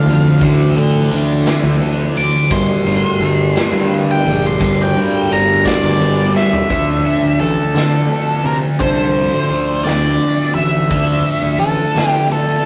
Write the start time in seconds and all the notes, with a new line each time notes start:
Already playing: D2 A2 D3 E3 F3 A3 D4 F5
0.06 F2, closed hi-hat
0.31 A2
0.41 D2 D3 A3 D4, kick, closed hi-hat, tambourine
0.59 tambourine
0.76 D3, closed hi-hat
0.92 D3
1.11 D2, closed hi-hat
1.46 snare, closed hi-hat, tambourine
1.55 D3
1.63 D2
1.82 D2, closed hi-hat
2.15 D2 D6, closed hi-hat
2.50 G1 G2 D3 G3 D4 G4 A#4 C6, kick, closed hi-hat, tambourine
2.68 tambourine
2.77 A2
2.85 G1, closed hi-hat
3.20 G1, closed hi-hat
3.40 D3
3.56 snare, closed hi-hat, tambourine
3.72 G2
3.91 closed hi-hat
4.02 D3
4.11 G5
4.25 A#1, closed hi-hat
4.47 C6
4.58 G1 D2 G2 D3, kick, closed hi-hat, tambourine
4.63 G3
4.82 G5
4.96 G2, closed hi-hat
5.26 A2
5.31 G1 A#5, closed hi-hat
5.65 D5, kick, snare, closed hi-hat, tambourine
5.84 G1 D3
6.01 G1, closed hi-hat
6.18 tambourine
6.36 E5, snare
6.50 D3, floor tom
6.69 D2 D3 F3 A3 D4 F4, kick, closed hi-hat, tambourine
6.89 tambourine
7.06 closed hi-hat
7.23 D2, tambourine
7.40 A1 A4, closed hi-hat
7.74 D3, snare, closed hi-hat, tambourine
7.93 tambourine
8.10 closed hi-hat, tambourine
8.28 tambourine
8.44 C3 A#4, closed hi-hat
8.79 C2 D3 A3 D4 C5, kick, closed hi-hat, tambourine
8.97 tambourine
9.16 closed hi-hat
9.31 D3, tambourine
9.50 D2, closed hi-hat
9.84 D2 D5, snare, closed hi-hat, tambourine
10.03 tambourine
10.19 closed hi-hat, tambourine
10.37 tambourine
10.55 A1 E5, closed hi-hat
10.89 D2 D3 A3 D4, kick, closed hi-hat, tambourine
11.08 tambourine
11.27 closed hi-hat
11.42 D2
11.59 A1 A4, closed hi-hat
11.95 D3, snare, closed hi-hat, tambourine
12.10 G4, tambourine
12.29 A4, closed hi-hat, tambourine
12.47 tambourine